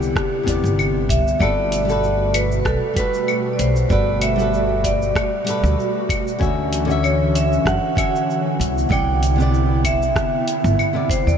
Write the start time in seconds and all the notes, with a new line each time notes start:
Already playing: C3 D3 B3 E4 G4 D5
0.02 cabasa
0.16 kick, cross-stick, cabasa
0.43 E2 C3 B3, kick
0.47 E4 D5, closed hi-hat, cabasa
0.64 G1, cabasa
0.79 cabasa, claves
1.09 C2 E5, kick, closed hi-hat, cabasa
1.28 cabasa
1.39 G1 B2 G3 A3 F#4 A4 B4 D5, kick, cabasa, claves
1.72 closed hi-hat, cabasa
1.85 G3 F#4
1.89 A4 B4, cabasa
2.04 cabasa
2.34 B4, closed hi-hat, cabasa, claves
2.52 cabasa
2.60 B4
2.65 B1 A4, kick, cross-stick, cabasa
2.94 G3 F#4 B4, kick, closed hi-hat, cabasa
2.98 A4 B4
3.14 cabasa
3.28 cabasa, claves
3.53 D5
3.59 B1 C5, closed hi-hat, cabasa
3.76 cabasa
3.89 G1 G3 F#4 A4 B4 D5, kick, cabasa
4.21 E5, closed hi-hat, cabasa, claves
4.36 G3 F#4, cabasa
4.40 A4 B4
4.54 cabasa
4.84 D5, kick, closed hi-hat, cabasa
5.02 cabasa
5.16 kick, cross-stick, cabasa, claves
5.45 G3 F#4 A4, closed hi-hat, cabasa
5.50 B4
5.64 D2, cabasa
5.80 cabasa
6.09 kick, closed hi-hat, cabasa, claves
6.28 cabasa
6.39 D2 D3 E3 C#4 F#4 E5, kick, cabasa
6.73 closed hi-hat, cabasa
6.85 D3 C#4 F#4
6.90 E5, cabasa
7.03 C#5, cabasa, claves
7.35 E5, closed hi-hat, cabasa
7.53 cabasa
7.66 F#2 F#5, kick, cross-stick, cabasa
7.95 D3 C#4 F#4 E5, kick, closed hi-hat, cabasa, claves
8.16 cabasa
8.30 cabasa
8.60 C2 D3 B3 E4, closed hi-hat, cabasa
8.78 cabasa
8.89 C2 C3 B3 E4 D5 G5, kick, cabasa, claves
9.23 closed hi-hat, cabasa
9.36 C3 B3
9.40 E4 D5, cabasa
9.54 cabasa
9.84 E5, kick, closed hi-hat, cabasa, claves
10.02 cabasa
10.16 kick, cross-stick, cabasa
10.48 closed hi-hat, cabasa
10.64 G1, cabasa
10.79 cabasa, claves
10.93 C3 B3 E4 D5
11.10 C5, kick, closed hi-hat, cabasa
11.27 E2 D5, cabasa